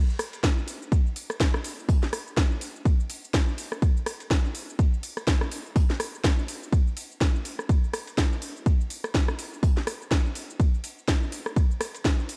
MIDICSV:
0, 0, Header, 1, 2, 480
1, 0, Start_track
1, 0, Tempo, 483871
1, 1872, Time_signature, 4, 2, 24, 8
1, 12268, End_track
2, 0, Start_track
2, 0, Title_t, "Drums"
2, 97, Note_on_c, 9, 82, 23
2, 191, Note_on_c, 9, 37, 84
2, 191, Note_on_c, 9, 46, 105
2, 192, Note_on_c, 9, 51, 69
2, 196, Note_off_c, 9, 82, 0
2, 199, Note_on_c, 9, 82, 82
2, 290, Note_off_c, 9, 37, 0
2, 290, Note_off_c, 9, 46, 0
2, 291, Note_off_c, 9, 51, 0
2, 298, Note_off_c, 9, 82, 0
2, 329, Note_on_c, 9, 51, 47
2, 337, Note_on_c, 9, 82, 34
2, 429, Note_off_c, 9, 51, 0
2, 432, Note_on_c, 9, 36, 112
2, 432, Note_on_c, 9, 38, 116
2, 432, Note_on_c, 9, 51, 88
2, 434, Note_off_c, 9, 38, 0
2, 434, Note_on_c, 9, 38, 127
2, 436, Note_off_c, 9, 82, 0
2, 439, Note_on_c, 9, 82, 47
2, 531, Note_off_c, 9, 36, 0
2, 531, Note_off_c, 9, 51, 0
2, 533, Note_off_c, 9, 38, 0
2, 538, Note_off_c, 9, 82, 0
2, 577, Note_on_c, 9, 82, 22
2, 671, Note_on_c, 9, 46, 110
2, 672, Note_on_c, 9, 51, 70
2, 676, Note_off_c, 9, 82, 0
2, 679, Note_on_c, 9, 82, 81
2, 770, Note_off_c, 9, 46, 0
2, 771, Note_off_c, 9, 51, 0
2, 778, Note_off_c, 9, 82, 0
2, 817, Note_on_c, 9, 82, 36
2, 912, Note_on_c, 9, 36, 115
2, 912, Note_on_c, 9, 51, 88
2, 916, Note_off_c, 9, 82, 0
2, 919, Note_on_c, 9, 82, 47
2, 1011, Note_off_c, 9, 36, 0
2, 1011, Note_off_c, 9, 51, 0
2, 1018, Note_off_c, 9, 82, 0
2, 1057, Note_on_c, 9, 82, 24
2, 1151, Note_on_c, 9, 46, 108
2, 1152, Note_on_c, 9, 51, 70
2, 1156, Note_off_c, 9, 82, 0
2, 1159, Note_on_c, 9, 82, 84
2, 1250, Note_off_c, 9, 46, 0
2, 1251, Note_off_c, 9, 51, 0
2, 1258, Note_off_c, 9, 82, 0
2, 1289, Note_on_c, 9, 37, 64
2, 1290, Note_on_c, 9, 51, 45
2, 1297, Note_on_c, 9, 82, 33
2, 1388, Note_off_c, 9, 37, 0
2, 1389, Note_off_c, 9, 51, 0
2, 1391, Note_on_c, 9, 36, 123
2, 1392, Note_on_c, 9, 38, 118
2, 1392, Note_on_c, 9, 51, 89
2, 1394, Note_off_c, 9, 38, 0
2, 1394, Note_on_c, 9, 38, 123
2, 1396, Note_off_c, 9, 82, 0
2, 1399, Note_on_c, 9, 82, 48
2, 1491, Note_off_c, 9, 36, 0
2, 1491, Note_off_c, 9, 51, 0
2, 1494, Note_off_c, 9, 38, 0
2, 1498, Note_off_c, 9, 82, 0
2, 1529, Note_on_c, 9, 37, 80
2, 1537, Note_on_c, 9, 82, 24
2, 1628, Note_off_c, 9, 37, 0
2, 1631, Note_on_c, 9, 46, 108
2, 1632, Note_on_c, 9, 51, 68
2, 1636, Note_off_c, 9, 82, 0
2, 1639, Note_on_c, 9, 82, 83
2, 1730, Note_off_c, 9, 46, 0
2, 1731, Note_off_c, 9, 51, 0
2, 1738, Note_off_c, 9, 82, 0
2, 1777, Note_on_c, 9, 82, 35
2, 1871, Note_on_c, 9, 36, 123
2, 1872, Note_on_c, 9, 46, 81
2, 1876, Note_off_c, 9, 82, 0
2, 1879, Note_on_c, 9, 82, 47
2, 1971, Note_off_c, 9, 36, 0
2, 1971, Note_off_c, 9, 46, 0
2, 1978, Note_off_c, 9, 82, 0
2, 2010, Note_on_c, 9, 51, 45
2, 2013, Note_on_c, 9, 38, 39
2, 2017, Note_on_c, 9, 82, 24
2, 2109, Note_off_c, 9, 51, 0
2, 2111, Note_on_c, 9, 51, 73
2, 2112, Note_off_c, 9, 38, 0
2, 2112, Note_on_c, 9, 37, 82
2, 2112, Note_on_c, 9, 46, 113
2, 2116, Note_off_c, 9, 82, 0
2, 2119, Note_on_c, 9, 82, 83
2, 2210, Note_off_c, 9, 51, 0
2, 2211, Note_off_c, 9, 37, 0
2, 2211, Note_off_c, 9, 46, 0
2, 2219, Note_off_c, 9, 82, 0
2, 2257, Note_on_c, 9, 82, 32
2, 2352, Note_on_c, 9, 36, 126
2, 2352, Note_on_c, 9, 38, 120
2, 2352, Note_on_c, 9, 51, 88
2, 2354, Note_off_c, 9, 38, 0
2, 2354, Note_on_c, 9, 38, 127
2, 2356, Note_off_c, 9, 82, 0
2, 2359, Note_on_c, 9, 82, 47
2, 2451, Note_off_c, 9, 36, 0
2, 2451, Note_off_c, 9, 51, 0
2, 2454, Note_off_c, 9, 38, 0
2, 2458, Note_off_c, 9, 82, 0
2, 2497, Note_on_c, 9, 82, 22
2, 2591, Note_on_c, 9, 51, 68
2, 2592, Note_on_c, 9, 46, 112
2, 2596, Note_off_c, 9, 82, 0
2, 2599, Note_on_c, 9, 82, 82
2, 2691, Note_off_c, 9, 46, 0
2, 2691, Note_off_c, 9, 51, 0
2, 2699, Note_off_c, 9, 82, 0
2, 2737, Note_on_c, 9, 82, 34
2, 2831, Note_on_c, 9, 36, 123
2, 2831, Note_on_c, 9, 51, 89
2, 2836, Note_off_c, 9, 82, 0
2, 2839, Note_on_c, 9, 82, 44
2, 2931, Note_off_c, 9, 36, 0
2, 2931, Note_off_c, 9, 51, 0
2, 2938, Note_off_c, 9, 82, 0
2, 2977, Note_on_c, 9, 82, 23
2, 3071, Note_on_c, 9, 46, 109
2, 3072, Note_on_c, 9, 51, 70
2, 3076, Note_off_c, 9, 82, 0
2, 3079, Note_on_c, 9, 82, 79
2, 3171, Note_off_c, 9, 46, 0
2, 3171, Note_off_c, 9, 51, 0
2, 3178, Note_off_c, 9, 82, 0
2, 3217, Note_on_c, 9, 82, 33
2, 3312, Note_on_c, 9, 36, 126
2, 3312, Note_on_c, 9, 38, 121
2, 3312, Note_on_c, 9, 51, 89
2, 3315, Note_off_c, 9, 38, 0
2, 3315, Note_on_c, 9, 38, 122
2, 3316, Note_off_c, 9, 82, 0
2, 3319, Note_on_c, 9, 82, 44
2, 3411, Note_off_c, 9, 36, 0
2, 3411, Note_off_c, 9, 51, 0
2, 3414, Note_off_c, 9, 38, 0
2, 3418, Note_off_c, 9, 82, 0
2, 3457, Note_on_c, 9, 82, 24
2, 3551, Note_on_c, 9, 46, 109
2, 3552, Note_on_c, 9, 51, 68
2, 3556, Note_off_c, 9, 82, 0
2, 3559, Note_on_c, 9, 82, 82
2, 3651, Note_off_c, 9, 46, 0
2, 3651, Note_off_c, 9, 51, 0
2, 3658, Note_off_c, 9, 82, 0
2, 3689, Note_on_c, 9, 37, 66
2, 3697, Note_on_c, 9, 82, 34
2, 3789, Note_off_c, 9, 37, 0
2, 3792, Note_on_c, 9, 36, 124
2, 3792, Note_on_c, 9, 51, 92
2, 3796, Note_off_c, 9, 82, 0
2, 3799, Note_on_c, 9, 82, 45
2, 3891, Note_off_c, 9, 36, 0
2, 3891, Note_off_c, 9, 51, 0
2, 3899, Note_off_c, 9, 82, 0
2, 3937, Note_on_c, 9, 82, 22
2, 4031, Note_on_c, 9, 37, 79
2, 4031, Note_on_c, 9, 46, 112
2, 4032, Note_on_c, 9, 51, 69
2, 4037, Note_off_c, 9, 82, 0
2, 4039, Note_on_c, 9, 82, 77
2, 4130, Note_off_c, 9, 37, 0
2, 4130, Note_off_c, 9, 46, 0
2, 4131, Note_off_c, 9, 51, 0
2, 4138, Note_off_c, 9, 82, 0
2, 4169, Note_on_c, 9, 51, 47
2, 4177, Note_on_c, 9, 82, 33
2, 4269, Note_off_c, 9, 51, 0
2, 4271, Note_on_c, 9, 36, 121
2, 4272, Note_on_c, 9, 38, 120
2, 4272, Note_on_c, 9, 51, 91
2, 4275, Note_off_c, 9, 38, 0
2, 4275, Note_on_c, 9, 38, 124
2, 4276, Note_off_c, 9, 82, 0
2, 4279, Note_on_c, 9, 82, 46
2, 4371, Note_off_c, 9, 36, 0
2, 4371, Note_off_c, 9, 51, 0
2, 4374, Note_off_c, 9, 38, 0
2, 4378, Note_off_c, 9, 82, 0
2, 4417, Note_on_c, 9, 82, 21
2, 4511, Note_on_c, 9, 46, 110
2, 4511, Note_on_c, 9, 51, 67
2, 4516, Note_off_c, 9, 82, 0
2, 4519, Note_on_c, 9, 82, 78
2, 4610, Note_off_c, 9, 46, 0
2, 4611, Note_off_c, 9, 51, 0
2, 4618, Note_off_c, 9, 82, 0
2, 4657, Note_on_c, 9, 82, 33
2, 4751, Note_on_c, 9, 36, 119
2, 4751, Note_on_c, 9, 51, 89
2, 4756, Note_off_c, 9, 82, 0
2, 4759, Note_on_c, 9, 82, 44
2, 4851, Note_off_c, 9, 36, 0
2, 4851, Note_off_c, 9, 51, 0
2, 4858, Note_off_c, 9, 82, 0
2, 4897, Note_on_c, 9, 82, 22
2, 4991, Note_on_c, 9, 46, 115
2, 4991, Note_on_c, 9, 51, 69
2, 4996, Note_off_c, 9, 82, 0
2, 4999, Note_on_c, 9, 82, 79
2, 5090, Note_off_c, 9, 46, 0
2, 5091, Note_off_c, 9, 51, 0
2, 5098, Note_off_c, 9, 82, 0
2, 5129, Note_on_c, 9, 37, 63
2, 5129, Note_on_c, 9, 51, 44
2, 5137, Note_on_c, 9, 82, 33
2, 5228, Note_off_c, 9, 37, 0
2, 5229, Note_off_c, 9, 51, 0
2, 5231, Note_on_c, 9, 36, 127
2, 5231, Note_on_c, 9, 38, 115
2, 5231, Note_on_c, 9, 51, 93
2, 5234, Note_off_c, 9, 38, 0
2, 5234, Note_on_c, 9, 38, 122
2, 5236, Note_off_c, 9, 82, 0
2, 5239, Note_on_c, 9, 82, 45
2, 5331, Note_off_c, 9, 36, 0
2, 5331, Note_off_c, 9, 51, 0
2, 5334, Note_off_c, 9, 38, 0
2, 5338, Note_off_c, 9, 82, 0
2, 5369, Note_on_c, 9, 37, 76
2, 5377, Note_on_c, 9, 82, 23
2, 5468, Note_off_c, 9, 37, 0
2, 5471, Note_on_c, 9, 46, 110
2, 5472, Note_on_c, 9, 51, 70
2, 5476, Note_off_c, 9, 82, 0
2, 5479, Note_on_c, 9, 82, 79
2, 5570, Note_off_c, 9, 46, 0
2, 5571, Note_off_c, 9, 51, 0
2, 5578, Note_off_c, 9, 82, 0
2, 5616, Note_on_c, 9, 82, 34
2, 5711, Note_on_c, 9, 36, 126
2, 5712, Note_on_c, 9, 46, 82
2, 5716, Note_off_c, 9, 82, 0
2, 5718, Note_on_c, 9, 82, 43
2, 5811, Note_off_c, 9, 36, 0
2, 5811, Note_off_c, 9, 46, 0
2, 5818, Note_off_c, 9, 82, 0
2, 5850, Note_on_c, 9, 51, 43
2, 5852, Note_on_c, 9, 38, 37
2, 5857, Note_on_c, 9, 82, 21
2, 5949, Note_off_c, 9, 51, 0
2, 5951, Note_on_c, 9, 37, 83
2, 5951, Note_on_c, 9, 46, 109
2, 5952, Note_off_c, 9, 38, 0
2, 5952, Note_on_c, 9, 51, 72
2, 5956, Note_off_c, 9, 82, 0
2, 5958, Note_on_c, 9, 82, 76
2, 6050, Note_off_c, 9, 37, 0
2, 6050, Note_off_c, 9, 46, 0
2, 6051, Note_off_c, 9, 51, 0
2, 6058, Note_off_c, 9, 82, 0
2, 6097, Note_on_c, 9, 82, 30
2, 6191, Note_on_c, 9, 36, 125
2, 6191, Note_on_c, 9, 38, 122
2, 6191, Note_on_c, 9, 51, 92
2, 6194, Note_off_c, 9, 38, 0
2, 6194, Note_on_c, 9, 38, 124
2, 6196, Note_off_c, 9, 82, 0
2, 6199, Note_on_c, 9, 82, 46
2, 6291, Note_off_c, 9, 36, 0
2, 6291, Note_off_c, 9, 51, 0
2, 6293, Note_off_c, 9, 38, 0
2, 6298, Note_off_c, 9, 82, 0
2, 6337, Note_on_c, 9, 82, 22
2, 6431, Note_on_c, 9, 46, 113
2, 6432, Note_on_c, 9, 51, 66
2, 6436, Note_off_c, 9, 82, 0
2, 6439, Note_on_c, 9, 82, 78
2, 6531, Note_off_c, 9, 46, 0
2, 6531, Note_off_c, 9, 51, 0
2, 6538, Note_off_c, 9, 82, 0
2, 6577, Note_on_c, 9, 82, 33
2, 6671, Note_on_c, 9, 36, 122
2, 6672, Note_on_c, 9, 51, 91
2, 6676, Note_off_c, 9, 82, 0
2, 6679, Note_on_c, 9, 82, 44
2, 6771, Note_off_c, 9, 36, 0
2, 6771, Note_off_c, 9, 51, 0
2, 6778, Note_off_c, 9, 82, 0
2, 6817, Note_on_c, 9, 82, 21
2, 6911, Note_on_c, 9, 46, 111
2, 6911, Note_on_c, 9, 51, 67
2, 6916, Note_off_c, 9, 82, 0
2, 6919, Note_on_c, 9, 82, 74
2, 7010, Note_off_c, 9, 46, 0
2, 7011, Note_off_c, 9, 51, 0
2, 7018, Note_off_c, 9, 82, 0
2, 7057, Note_on_c, 9, 82, 32
2, 7151, Note_on_c, 9, 36, 126
2, 7152, Note_on_c, 9, 38, 111
2, 7152, Note_on_c, 9, 51, 82
2, 7155, Note_off_c, 9, 38, 0
2, 7155, Note_on_c, 9, 38, 115
2, 7156, Note_off_c, 9, 82, 0
2, 7159, Note_on_c, 9, 82, 42
2, 7251, Note_off_c, 9, 36, 0
2, 7251, Note_off_c, 9, 51, 0
2, 7254, Note_off_c, 9, 38, 0
2, 7258, Note_off_c, 9, 82, 0
2, 7298, Note_on_c, 9, 82, 21
2, 7391, Note_on_c, 9, 51, 68
2, 7392, Note_on_c, 9, 46, 105
2, 7397, Note_off_c, 9, 82, 0
2, 7400, Note_on_c, 9, 82, 76
2, 7491, Note_off_c, 9, 46, 0
2, 7491, Note_off_c, 9, 51, 0
2, 7499, Note_off_c, 9, 82, 0
2, 7530, Note_on_c, 9, 37, 63
2, 7538, Note_on_c, 9, 82, 32
2, 7629, Note_off_c, 9, 37, 0
2, 7631, Note_on_c, 9, 51, 92
2, 7632, Note_on_c, 9, 36, 114
2, 7637, Note_off_c, 9, 82, 0
2, 7640, Note_on_c, 9, 82, 44
2, 7731, Note_off_c, 9, 36, 0
2, 7731, Note_off_c, 9, 51, 0
2, 7739, Note_off_c, 9, 82, 0
2, 7778, Note_on_c, 9, 82, 23
2, 7872, Note_on_c, 9, 37, 83
2, 7872, Note_on_c, 9, 46, 107
2, 7872, Note_on_c, 9, 51, 71
2, 7877, Note_off_c, 9, 82, 0
2, 7879, Note_on_c, 9, 82, 75
2, 7971, Note_off_c, 9, 37, 0
2, 7971, Note_off_c, 9, 46, 0
2, 7971, Note_off_c, 9, 51, 0
2, 7979, Note_off_c, 9, 82, 0
2, 8009, Note_on_c, 9, 51, 45
2, 8018, Note_on_c, 9, 82, 30
2, 8109, Note_off_c, 9, 51, 0
2, 8111, Note_on_c, 9, 38, 122
2, 8111, Note_on_c, 9, 51, 85
2, 8112, Note_on_c, 9, 36, 120
2, 8115, Note_off_c, 9, 38, 0
2, 8115, Note_on_c, 9, 38, 117
2, 8117, Note_off_c, 9, 82, 0
2, 8120, Note_on_c, 9, 82, 44
2, 8210, Note_off_c, 9, 51, 0
2, 8211, Note_off_c, 9, 36, 0
2, 8215, Note_off_c, 9, 38, 0
2, 8219, Note_off_c, 9, 82, 0
2, 8258, Note_on_c, 9, 82, 21
2, 8352, Note_on_c, 9, 46, 110
2, 8352, Note_on_c, 9, 51, 70
2, 8357, Note_off_c, 9, 82, 0
2, 8360, Note_on_c, 9, 82, 77
2, 8451, Note_off_c, 9, 46, 0
2, 8451, Note_off_c, 9, 51, 0
2, 8459, Note_off_c, 9, 82, 0
2, 8497, Note_on_c, 9, 82, 33
2, 8592, Note_on_c, 9, 36, 117
2, 8592, Note_on_c, 9, 51, 91
2, 8597, Note_off_c, 9, 82, 0
2, 8599, Note_on_c, 9, 82, 43
2, 8691, Note_off_c, 9, 36, 0
2, 8691, Note_off_c, 9, 51, 0
2, 8699, Note_off_c, 9, 82, 0
2, 8737, Note_on_c, 9, 82, 22
2, 8832, Note_on_c, 9, 46, 109
2, 8832, Note_on_c, 9, 51, 69
2, 8836, Note_off_c, 9, 82, 0
2, 8839, Note_on_c, 9, 82, 78
2, 8931, Note_off_c, 9, 46, 0
2, 8931, Note_off_c, 9, 51, 0
2, 8939, Note_off_c, 9, 82, 0
2, 8970, Note_on_c, 9, 37, 69
2, 8970, Note_on_c, 9, 51, 44
2, 8977, Note_on_c, 9, 82, 33
2, 9069, Note_off_c, 9, 37, 0
2, 9069, Note_off_c, 9, 51, 0
2, 9072, Note_on_c, 9, 36, 115
2, 9072, Note_on_c, 9, 38, 120
2, 9072, Note_on_c, 9, 51, 93
2, 9075, Note_off_c, 9, 38, 0
2, 9075, Note_on_c, 9, 38, 110
2, 9077, Note_off_c, 9, 82, 0
2, 9079, Note_on_c, 9, 82, 43
2, 9171, Note_off_c, 9, 36, 0
2, 9171, Note_off_c, 9, 51, 0
2, 9174, Note_off_c, 9, 38, 0
2, 9179, Note_off_c, 9, 82, 0
2, 9210, Note_on_c, 9, 37, 82
2, 9217, Note_on_c, 9, 82, 22
2, 9309, Note_off_c, 9, 37, 0
2, 9312, Note_on_c, 9, 46, 103
2, 9312, Note_on_c, 9, 51, 70
2, 9316, Note_off_c, 9, 82, 0
2, 9320, Note_on_c, 9, 82, 75
2, 9411, Note_off_c, 9, 46, 0
2, 9411, Note_off_c, 9, 51, 0
2, 9419, Note_off_c, 9, 82, 0
2, 9457, Note_on_c, 9, 82, 34
2, 9552, Note_on_c, 9, 36, 121
2, 9552, Note_on_c, 9, 46, 85
2, 9556, Note_off_c, 9, 82, 0
2, 9559, Note_on_c, 9, 82, 45
2, 9651, Note_off_c, 9, 36, 0
2, 9651, Note_off_c, 9, 46, 0
2, 9658, Note_off_c, 9, 82, 0
2, 9689, Note_on_c, 9, 51, 44
2, 9693, Note_on_c, 9, 38, 35
2, 9697, Note_on_c, 9, 82, 22
2, 9789, Note_off_c, 9, 51, 0
2, 9792, Note_off_c, 9, 38, 0
2, 9792, Note_on_c, 9, 37, 88
2, 9792, Note_on_c, 9, 46, 102
2, 9792, Note_on_c, 9, 51, 69
2, 9796, Note_off_c, 9, 82, 0
2, 9799, Note_on_c, 9, 82, 79
2, 9891, Note_off_c, 9, 37, 0
2, 9891, Note_off_c, 9, 46, 0
2, 9891, Note_off_c, 9, 51, 0
2, 9899, Note_off_c, 9, 82, 0
2, 9937, Note_on_c, 9, 82, 32
2, 10032, Note_on_c, 9, 36, 112
2, 10032, Note_on_c, 9, 38, 117
2, 10032, Note_on_c, 9, 51, 90
2, 10035, Note_off_c, 9, 38, 0
2, 10035, Note_on_c, 9, 38, 118
2, 10036, Note_off_c, 9, 82, 0
2, 10039, Note_on_c, 9, 82, 47
2, 10131, Note_off_c, 9, 36, 0
2, 10131, Note_off_c, 9, 51, 0
2, 10134, Note_off_c, 9, 38, 0
2, 10138, Note_off_c, 9, 82, 0
2, 10177, Note_on_c, 9, 82, 22
2, 10271, Note_on_c, 9, 46, 102
2, 10271, Note_on_c, 9, 51, 73
2, 10276, Note_off_c, 9, 82, 0
2, 10279, Note_on_c, 9, 82, 79
2, 10370, Note_off_c, 9, 46, 0
2, 10370, Note_off_c, 9, 51, 0
2, 10378, Note_off_c, 9, 82, 0
2, 10417, Note_on_c, 9, 82, 34
2, 10511, Note_on_c, 9, 51, 86
2, 10512, Note_on_c, 9, 36, 112
2, 10516, Note_off_c, 9, 82, 0
2, 10519, Note_on_c, 9, 82, 47
2, 10611, Note_off_c, 9, 36, 0
2, 10611, Note_off_c, 9, 51, 0
2, 10618, Note_off_c, 9, 82, 0
2, 10657, Note_on_c, 9, 82, 22
2, 10751, Note_on_c, 9, 46, 105
2, 10752, Note_on_c, 9, 51, 70
2, 10756, Note_off_c, 9, 82, 0
2, 10759, Note_on_c, 9, 82, 79
2, 10850, Note_off_c, 9, 46, 0
2, 10851, Note_off_c, 9, 51, 0
2, 10858, Note_off_c, 9, 82, 0
2, 10897, Note_on_c, 9, 82, 34
2, 10992, Note_on_c, 9, 36, 110
2, 10992, Note_on_c, 9, 38, 121
2, 10992, Note_on_c, 9, 51, 91
2, 10995, Note_off_c, 9, 38, 0
2, 10995, Note_on_c, 9, 38, 116
2, 10996, Note_off_c, 9, 82, 0
2, 10999, Note_on_c, 9, 82, 43
2, 11091, Note_off_c, 9, 36, 0
2, 11091, Note_off_c, 9, 51, 0
2, 11094, Note_off_c, 9, 38, 0
2, 11099, Note_off_c, 9, 82, 0
2, 11137, Note_on_c, 9, 82, 23
2, 11232, Note_on_c, 9, 46, 99
2, 11232, Note_on_c, 9, 51, 71
2, 11237, Note_off_c, 9, 82, 0
2, 11239, Note_on_c, 9, 82, 79
2, 11331, Note_off_c, 9, 46, 0
2, 11331, Note_off_c, 9, 51, 0
2, 11339, Note_off_c, 9, 82, 0
2, 11370, Note_on_c, 9, 37, 69
2, 11377, Note_on_c, 9, 82, 34
2, 11469, Note_off_c, 9, 37, 0
2, 11471, Note_on_c, 9, 51, 92
2, 11472, Note_on_c, 9, 36, 114
2, 11477, Note_off_c, 9, 82, 0
2, 11479, Note_on_c, 9, 82, 48
2, 11570, Note_off_c, 9, 51, 0
2, 11571, Note_off_c, 9, 36, 0
2, 11578, Note_off_c, 9, 82, 0
2, 11617, Note_on_c, 9, 82, 24
2, 11712, Note_on_c, 9, 37, 91
2, 11712, Note_on_c, 9, 46, 102
2, 11712, Note_on_c, 9, 51, 75
2, 11717, Note_off_c, 9, 82, 0
2, 11719, Note_on_c, 9, 82, 83
2, 11811, Note_off_c, 9, 37, 0
2, 11811, Note_off_c, 9, 46, 0
2, 11811, Note_off_c, 9, 51, 0
2, 11819, Note_off_c, 9, 82, 0
2, 11850, Note_on_c, 9, 51, 48
2, 11858, Note_on_c, 9, 82, 35
2, 11949, Note_off_c, 9, 51, 0
2, 11951, Note_on_c, 9, 38, 118
2, 11951, Note_on_c, 9, 51, 90
2, 11952, Note_on_c, 9, 36, 113
2, 11955, Note_off_c, 9, 38, 0
2, 11955, Note_on_c, 9, 38, 122
2, 11957, Note_off_c, 9, 82, 0
2, 11960, Note_on_c, 9, 82, 49
2, 12051, Note_off_c, 9, 36, 0
2, 12051, Note_off_c, 9, 51, 0
2, 12055, Note_off_c, 9, 38, 0
2, 12059, Note_off_c, 9, 82, 0
2, 12098, Note_on_c, 9, 82, 22
2, 12191, Note_on_c, 9, 51, 69
2, 12192, Note_on_c, 9, 46, 102
2, 12197, Note_off_c, 9, 82, 0
2, 12199, Note_on_c, 9, 82, 87
2, 12268, Note_off_c, 9, 46, 0
2, 12268, Note_off_c, 9, 51, 0
2, 12268, Note_off_c, 9, 82, 0
2, 12268, End_track
0, 0, End_of_file